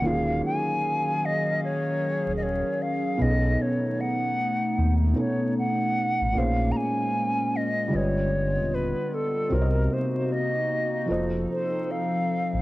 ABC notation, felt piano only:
X:1
M:4/4
L:1/8
Q:"Swing 16ths" 1/4=76
K:Ebdor
V:1 name="Felt piano"
[E,B,DFGA]8 | [=B,,=B,^C^DA=A]4- [B,,B,CD_A=A] [B,,B,CDA]3 | [B,,B,DAc]4 [=D,=G,F=Be]4 | [C,CGBde]4 [F,F=Ace]4 |]